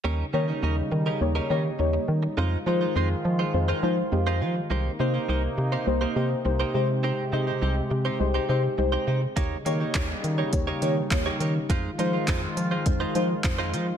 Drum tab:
HH |--------|--------|--------|--------|
CP |--------|--------|--------|--------|
SD |--------|--------|--------|--------|
BD |--------|--------|--------|--------|

HH |xxxxxxxx|xxxxxxxx|
CP |--x---x-|--x---x-|
SD |--o---o-|--o---o-|
BD |o-o-o-o-|o-o-o-o-|